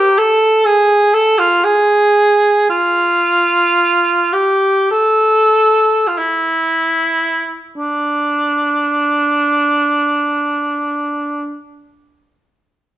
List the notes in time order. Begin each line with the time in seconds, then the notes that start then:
Already playing: G4
0.18 A4
0.65 G#4
1.13 A4
1.39 F4
1.64 G#4
2.70 F4
4.33 G4
4.91 A4
6.08 F4
6.18 E4
7.77 D4